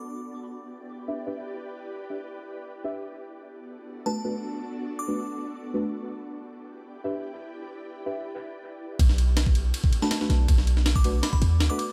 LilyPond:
<<
  \new Staff \with { instrumentName = "Synth bell" } { \time 4/4 \key b \minor \tempo 4 = 161 r1 | r1 | r2 r8. a''8 r8. | r4 r16 d'''8. r2 |
r1 | r1 | r2 r8. a''8 r8. | r4 r16 d'''8. b''16 b''16 r8. d'''16 d'''16 r16 | }
  \new Staff \with { instrumentName = "Ambient pad" } { \time 4/4 \key b \minor <e' g' b' d'' g''>1~ | <e' g' b' d'' g''>1 | <b d' fis' a' d''>1~ | <b d' fis' a' d''>1 |
<e' g' b' d'' g''>1~ | <e' g' b' d'' g''>1 | r1 | r1 | }
  \new Staff \with { instrumentName = "Synth stab" } { \time 4/4 \key b \minor r2 r8. <d' g' b' e''>16 r16 <d' g' b' e''>16 r8 | r4. <d' g' b' e''>16 r4. r16 <d' g' b' e''>16 r16 | r2 r8. <a d' fis' b'>16 r16 <a d' fis' b'>16 r8 | r4. <a d' fis' b'>16 r4. <a d' fis' b'>16 r8 |
r2 r8. <d' g' b' e''>16 r4 | r4. <d' g' b' e''>16 r2 r16 | r2 r8. <a d' fis' b'>16 r16 <a d' fis' b'>16 r8 | r4. <a d' fis' b'>16 r4. <a d' fis' b'>16 r8 | }
  \new Staff \with { instrumentName = "808-style bass" } { \clef bass \time 4/4 \key b \minor r1 | r1 | r1 | r1 |
r1 | r1 | b,,2 r4. b,,8 | b,,2 r8 e,8 d,8 r8 | }
  \new DrumStaff \with { instrumentName = "Drums" } \drummode { \time 4/4 r4 r4 r4 r4 | r4 r4 r4 r4 | r4 r4 r4 r4 | r4 r4 r4 r4 |
r4 r4 r4 r4 | r4 r4 r4 r4 | <bd cymr>16 sn16 cymr8 <cymr sn>16 bd16 cymr8 cymr16 bd16 cymr16 sn16 <cymr sn>16 sn16 <cymr sn>8 | <bd cymr>16 sn16 cymr16 sn16 <cymr sn>16 bd16 cymr8 <cymr sn>16 bd16 cymr8 <cymr sn>8 cymr8 | }
>>